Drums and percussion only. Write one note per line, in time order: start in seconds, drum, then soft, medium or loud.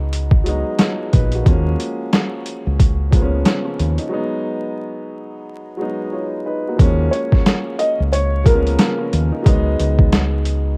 0.13 closed hi-hat medium
0.31 kick loud
0.46 closed hi-hat medium
0.79 snare loud
0.79 closed hi-hat loud
1.13 kick medium
1.13 closed hi-hat medium
1.32 closed hi-hat medium
1.46 kick loud
1.46 closed hi-hat medium
1.80 closed hi-hat medium
2.13 snare loud
2.13 closed hi-hat medium
2.46 closed hi-hat medium
2.79 kick medium
2.79 closed hi-hat loud
3.12 kick medium
3.12 closed hi-hat medium
3.45 snare loud
3.45 closed hi-hat loud
3.80 closed hi-hat medium
3.98 closed hi-hat medium
6.79 kick loud
6.79 closed hi-hat medium
7.13 closed hi-hat medium
7.32 kick medium
7.32 snare soft
7.46 snare loud
7.46 closed hi-hat medium
7.79 closed hi-hat medium
8.13 closed hi-hat loud
8.46 kick loud
8.46 closed hi-hat medium
8.67 closed hi-hat medium
8.79 snare loud
8.79 closed hi-hat loud
9.13 closed hi-hat medium
9.46 kick loud
9.46 closed hi-hat medium
9.80 closed hi-hat medium
9.99 kick medium
10.13 snare loud
10.13 closed hi-hat medium
10.46 closed hi-hat medium